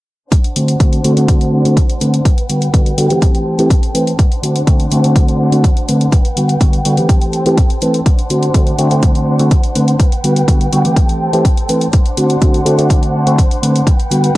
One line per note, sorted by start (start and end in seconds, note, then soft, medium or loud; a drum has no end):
0.32 2.24 D4 medium
0.32 2.24 C5 medium
0.32 2.23 F#5 medium
0.32 kick loud
0.32 closed hi-hat medium
0.44 closed hi-hat soft
0.56 0.73 D3 medium
0.56 0.74 A3 medium
0.56 0.74 C4 medium
0.56 0.74 F#4 medium
0.56 closed hi-hat medium
0.68 closed hi-hat soft
0.80 0.97 D3 medium
0.80 0.98 A3 medium
0.80 0.98 C4 medium
0.80 0.98 F#4 loud
0.80 kick loud
0.80 closed hi-hat medium
0.93 closed hi-hat soft
1.04 1.14 D3 medium
1.04 1.14 A3 medium
1.04 1.14 C4 medium
1.04 1.14 F#4 loud
1.04 closed hi-hat medium
1.16 1.62 D3 medium
1.16 1.62 A3 medium
1.16 1.62 C4 medium
1.16 1.62 F#4 medium
1.16 closed hi-hat soft
1.28 kick loud
1.28 closed hi-hat loud
1.41 closed hi-hat soft
1.65 1.76 D3 medium
1.65 1.76 A3 medium
1.65 1.76 C4 medium
1.65 1.76 F#4 loud
1.65 closed hi-hat soft
1.77 kick loud
1.77 closed hi-hat medium
1.90 closed hi-hat soft
2.01 2.18 D3 medium
2.01 2.18 A3 medium
2.01 2.19 C4 medium
2.01 2.19 B4 medium
2.01 closed hi-hat medium
2.14 closed hi-hat soft
2.25 3.21 B4 medium
2.25 3.21 F#5 medium
2.25 4.17 G5 medium
2.25 kick loud
2.25 closed hi-hat medium
2.38 closed hi-hat soft
2.49 2.67 D3 medium
2.49 2.67 G3 medium
2.49 2.67 B3 medium
2.49 2.67 F#4 medium
2.49 closed hi-hat medium
2.62 closed hi-hat soft
2.73 2.91 D3 medium
2.73 2.91 G3 medium
2.73 2.91 B3 medium
2.73 2.91 F#4 loud
2.73 kick loud
2.73 closed hi-hat medium
2.86 closed hi-hat soft
2.98 3.07 D3 medium
2.98 3.07 G3 medium
2.98 3.08 B3 medium
2.98 3.08 F#4 loud
2.98 closed hi-hat medium
3.10 3.56 E3 medium
3.10 3.56 A3 medium
3.10 3.56 C4 medium
3.10 3.56 G4 medium
3.10 closed hi-hat soft
3.22 4.18 C4 medium
3.22 4.18 A4 medium
3.22 kick loud
3.22 closed hi-hat medium
3.35 closed hi-hat soft
3.58 3.69 E3 medium
3.58 3.69 A3 medium
3.58 3.69 C4 medium
3.58 3.70 G4 medium
3.58 closed hi-hat soft
3.70 kick loud
3.70 closed hi-hat medium
3.83 closed hi-hat soft
3.94 4.12 E3 medium
3.94 4.12 A3 medium
3.94 4.12 C4 medium
3.94 4.12 B4 medium
3.94 closed hi-hat medium
4.07 closed hi-hat soft
4.19 6.11 D4 medium
4.19 6.11 C5 medium
4.19 6.11 F#5 medium
4.19 kick loud
4.19 closed hi-hat medium
4.32 closed hi-hat soft
4.43 4.60 D3 medium
4.43 4.61 A3 medium
4.43 4.61 C4 medium
4.43 4.61 F#4 medium
4.43 closed hi-hat medium
4.56 closed hi-hat soft
4.67 4.85 D3 medium
4.67 4.85 A3 medium
4.67 4.85 C4 medium
4.67 4.85 F#4 loud
4.67 kick loud
4.67 closed hi-hat medium
4.80 closed hi-hat soft
4.91 5.01 D3 medium
4.91 5.01 A3 medium
4.91 5.01 C4 medium
4.91 5.01 F#4 loud
4.91 closed hi-hat medium
5.04 5.49 D3 medium
5.04 5.50 A3 medium
5.04 5.50 C4 medium
5.04 5.50 F#4 medium
5.04 closed hi-hat soft
5.16 kick loud
5.16 closed hi-hat medium
5.28 closed hi-hat soft
5.52 5.63 D3 medium
5.52 5.63 A3 medium
5.52 5.63 C4 medium
5.52 5.63 F#4 loud
5.52 closed hi-hat soft
5.64 kick loud
5.64 closed hi-hat medium
5.77 closed hi-hat soft
5.88 6.06 D3 medium
5.88 6.06 A3 medium
5.88 6.06 C4 medium
5.88 6.06 B4 medium
5.88 closed hi-hat medium
6.01 closed hi-hat soft
6.12 7.08 B4 medium
6.12 7.08 F#5 medium
6.12 8.04 G5 medium
6.12 kick loud
6.12 closed hi-hat medium
6.25 closed hi-hat soft
6.36 6.54 D3 medium
6.36 6.54 G3 medium
6.36 6.54 B3 medium
6.36 6.55 F#4 medium
6.36 closed hi-hat medium
6.49 closed hi-hat soft
6.61 6.78 D3 medium
6.61 6.78 G3 medium
6.61 6.79 B3 medium
6.61 6.79 F#4 loud
6.61 kick loud
6.61 closed hi-hat medium
6.73 closed hi-hat soft
6.85 6.94 D3 medium
6.85 6.95 G3 medium
6.85 6.95 B3 medium
6.85 6.95 F#4 loud
6.85 closed hi-hat medium
6.97 7.43 E3 medium
6.97 7.43 A3 medium
6.97 7.43 C4 medium
6.97 7.43 G4 medium
6.97 closed hi-hat soft
7.09 8.05 C4 medium
7.09 8.05 A4 medium
7.09 kick loud
7.09 closed hi-hat medium
7.22 closed hi-hat soft
7.33 closed hi-hat soft
7.46 7.56 E3 medium
7.46 7.56 A3 medium
7.46 7.57 C4 medium
7.46 7.57 G4 loud
7.46 closed hi-hat soft
7.58 kick loud
7.58 closed hi-hat medium
7.70 closed hi-hat soft
7.82 7.99 E3 medium
7.82 7.99 A3 medium
7.82 8.00 C4 medium
7.82 8.00 B4 medium
7.82 closed hi-hat medium
7.94 closed hi-hat soft
8.06 9.98 D4 medium
8.06 9.98 C5 medium
8.06 9.98 F#5 medium
8.06 kick loud
8.06 closed hi-hat medium
8.19 closed hi-hat soft
8.30 8.48 D3 medium
8.30 8.48 A3 medium
8.30 8.48 C4 medium
8.30 8.48 F#4 medium
8.30 closed hi-hat medium
8.43 closed hi-hat soft
8.54 8.72 D3 medium
8.54 8.72 A3 medium
8.54 8.72 C4 medium
8.54 8.72 F#4 loud
8.54 kick loud
8.54 closed hi-hat medium
8.67 closed hi-hat soft
8.78 8.88 D3 loud
8.78 8.88 A3 medium
8.78 8.88 C4 medium
8.78 8.88 F#4 loud
8.78 closed hi-hat medium
8.91 9.36 D3 medium
8.91 9.37 A3 medium
8.91 9.37 C4 medium
8.91 9.37 F#4 medium
8.91 closed hi-hat soft
9.03 kick loud
9.03 closed hi-hat medium
9.15 closed hi-hat soft
9.39 9.50 D3 medium
9.39 9.50 A3 medium
9.39 9.50 C4 medium
9.39 9.50 F#4 loud
9.39 closed hi-hat soft
9.51 kick loud
9.51 closed hi-hat medium
9.63 closed hi-hat soft
9.75 9.93 D3 medium
9.75 9.93 A3 medium
9.75 9.93 C4 medium
9.75 9.93 B4 medium
9.75 closed hi-hat medium
9.88 closed hi-hat soft
10.00 10.96 B4 medium
10.00 10.96 F#5 medium
10.00 11.91 G5 medium
10.00 kick loud
10.00 closed hi-hat medium
10.12 closed hi-hat soft
10.24 10.41 D3 medium
10.24 10.41 G3 medium
10.24 10.41 B3 medium
10.24 10.42 F#4 medium
10.24 closed hi-hat medium
10.36 closed hi-hat soft
10.48 10.65 D3 medium
10.48 10.65 G3 medium
10.48 10.66 B3 medium
10.48 10.66 F#4 loud
10.48 kick loud
10.48 closed hi-hat medium
10.61 closed hi-hat soft
10.72 10.82 D3 loud
10.72 10.82 G3 medium
10.72 10.82 B3 medium
10.72 10.82 F#4 loud
10.72 closed hi-hat medium
10.84 11.30 E3 medium
10.84 11.30 A3 medium
10.84 11.30 C4 medium
10.84 11.30 G4 medium
10.84 closed hi-hat soft
10.96 11.92 C4 medium
10.96 11.92 A4 medium
10.96 kick loud
10.96 closed hi-hat medium
11.09 closed hi-hat soft
11.33 11.44 E3 medium
11.33 11.44 A3 medium
11.33 11.44 C4 medium
11.33 11.44 G4 loud
11.33 closed hi-hat soft
11.45 kick loud
11.45 closed hi-hat medium
11.57 closed hi-hat soft
11.69 11.86 E3 medium
11.69 11.86 A3 medium
11.69 11.87 C4 medium
11.69 11.87 B4 medium
11.69 closed hi-hat medium
11.81 closed hi-hat soft
11.93 13.85 D4 medium
11.93 12.89 C5 medium
11.93 13.85 F#5 medium
11.93 kick loud
11.93 closed hi-hat medium
12.06 closed hi-hat soft
12.17 12.35 D3 medium
12.17 12.35 A3 medium
12.17 12.35 C4 medium
12.17 12.35 F#4 medium
12.17 closed hi-hat medium
12.30 closed hi-hat soft
12.41 12.59 D3 medium
12.41 12.59 A3 medium
12.41 12.59 C4 medium
12.41 12.59 F#4 loud
12.41 kick loud
12.41 closed hi-hat medium
12.54 closed hi-hat soft
12.65 12.75 D3 medium
12.65 12.75 A3 medium
12.65 12.75 C4 medium
12.65 12.75 F#4 loud
12.65 closed hi-hat medium
12.78 13.23 D3 medium
12.78 13.24 A3 medium
12.78 13.24 C4 medium
12.78 13.24 F#4 medium
12.78 closed hi-hat soft
12.90 13.86 C5 medium
12.90 kick loud
12.90 closed hi-hat medium
13.03 closed hi-hat soft
13.26 13.37 D3 medium
13.26 13.37 A3 medium
13.26 13.37 C4 medium
13.26 13.37 F#4 loud
13.26 closed hi-hat soft
13.38 kick loud
13.38 closed hi-hat medium
13.51 closed hi-hat soft
13.62 13.80 D3 medium
13.62 13.80 A3 medium
13.62 13.80 C4 medium
13.62 13.80 B4 medium
13.62 closed hi-hat medium
13.76 closed hi-hat soft
13.87 14.37 B4 medium
13.87 14.37 F#5 medium
13.87 14.37 G5 medium
13.87 kick loud
13.87 closed hi-hat medium
14.00 closed hi-hat soft
14.11 14.28 D3 medium
14.11 14.28 G3 medium
14.11 14.29 B3 medium
14.11 14.29 F#4 medium
14.11 closed hi-hat medium
14.24 closed hi-hat soft